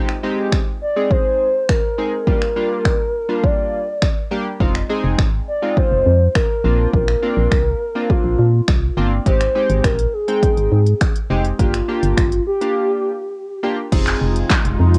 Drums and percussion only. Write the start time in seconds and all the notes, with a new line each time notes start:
0.09 finger snap
0.52 finger snap, kick
1.11 kick
1.69 finger snap, kick
2.27 kick
2.42 finger snap
2.85 finger snap, kick
3.44 kick
4.02 finger snap, kick
4.60 kick
4.75 finger snap
5.18 finger snap, kick
5.77 kick
6.35 finger snap, kick
6.93 kick
7.08 finger snap
7.51 finger snap, kick
8.10 kick
8.68 finger snap, kick
9.26 kick, closed hi-hat
9.41 finger snap, closed hi-hat
9.70 closed hi-hat
9.84 finger snap, kick, closed hi-hat
9.99 closed hi-hat
10.28 closed hi-hat
10.43 kick, closed hi-hat
10.57 closed hi-hat
10.87 closed hi-hat
11.01 finger snap, kick, closed hi-hat
11.16 closed hi-hat
11.45 closed hi-hat
11.59 kick, closed hi-hat
11.74 finger snap, closed hi-hat
12.03 closed hi-hat
12.17 finger snap, kick, closed hi-hat
12.32 closed hi-hat
12.61 closed hi-hat
13.92 kick, closed hi-hat, crash
14.07 clap, closed hi-hat
14.36 closed hi-hat
14.50 kick, snare, clap, closed hi-hat
14.65 closed hi-hat
14.94 closed hi-hat